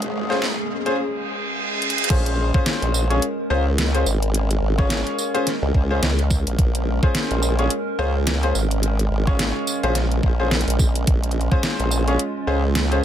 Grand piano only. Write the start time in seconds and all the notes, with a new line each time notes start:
0.30 C#4 F4 G#4 C5
0.86 C#4 F4 G#4 C5
2.10 C#4 F4 G#4 C5
2.54 C#4 F4 G#4 C5
3.10 C#4 F4 G#4 C#5
3.50 C#4 F4 G#4 C5
3.94 C#4 F4 G#4 C5
4.78 C#4 F4 G#4 C#5
5.34 C#4 F4 G#4 C5
5.90 C#4 F4 G#4 C5
7.03 C#4 F4 G#4 C5
7.59 C#4 F4 G#4 C#5
7.99 C#4 F4 G#4 C5
8.43 C#4 F4 G#4 C5
9.27 C#4 F4 G#4 C#5
9.83 C#4 F4 G#4 C5
10.39 C#4 F4 G#4 C5
11.52 C#4 F4 G#4 C5
12.07 C#4 F4 G#4 C#5
12.47 C#4 F4 G#4 C5
12.92 C#4 F4 G#4 C5